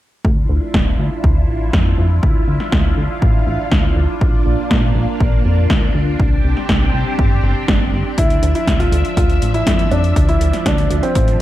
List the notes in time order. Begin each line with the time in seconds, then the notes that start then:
0.25 D2 D4 E4 F4, kick
0.49 D2
0.74 D1, kick, snare
0.99 D2
1.24 D2, kick
1.49 A1
1.73 F2, kick, snare
1.98 F2
2.23 D2, kick
2.48 D2
2.60 snare
2.72 D2, kick, snare
2.97 D2
3.22 A1, kick
3.47 A1
3.72 D2, kick, snare
3.96 D2
4.21 A#1 A#3, kick
4.46 A#1
4.71 A#2, kick, snare
4.95 A#1
5.20 A#1, kick
5.45 F2
5.70 D2, kick, snare
5.95 D2
6.20 C2 C4 G4, kick
6.44 C2
6.57 snare
6.69 C2, kick, snare
6.94 C2
7.19 G1, kick
7.44 G1
7.68 G1, kick, snare
7.93 G1
8.18 D2 F3 E4 E5, kick, closed hi-hat
8.30 closed hi-hat
8.43 D2, closed hi-hat
8.55 E4, closed hi-hat
8.68 D1, kick, snare, closed hi-hat
8.80 F4, closed hi-hat
8.92 D2, closed hi-hat
9.05 closed hi-hat
9.17 D2 F4, kick, closed hi-hat
9.30 closed hi-hat
9.42 A1, closed hi-hat
9.54 E4, closed hi-hat
9.67 F2, kick, snare, closed hi-hat
9.79 closed hi-hat
9.91 F2 D4, closed hi-hat
10.04 closed hi-hat
10.16 D2, kick, closed hi-hat
10.29 E4, closed hi-hat
10.41 D2, closed hi-hat
10.53 snare, closed hi-hat
10.66 D2 D4, kick, snare, closed hi-hat
10.78 closed hi-hat
10.90 D2, closed hi-hat
11.03 C4, closed hi-hat
11.15 A1, kick, closed hi-hat
11.28 closed hi-hat